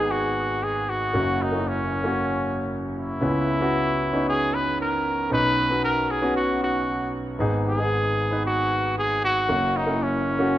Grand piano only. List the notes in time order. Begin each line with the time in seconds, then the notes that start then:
Already playing: G#1 G#2 B3 D#4 G#4
1.13 F#1 F#2 A#3 C#4 F#4
1.52 A#3 C#4 E4
1.60 F#4
2.04 A#3 C#4 F#4
3.21 C#2 C#3 B3 C#4 E4
3.61 B3 C#4 F#4
4.13 B3 C#4 D#4
5.30 B1 B2 B3 C#4 D#4
5.70 B3 C#4 F#4
6.22 B3 C#4 F#4
7.39 G#1 G#2 B3 D#4 G#4
7.78 B3 D#4 G#4
8.31 B3 D#4 B4
9.48 F#1 F#2 A#3 C#4 F#4
9.86 A#3 C#4 E4
10.39 A#3 C#4 F#4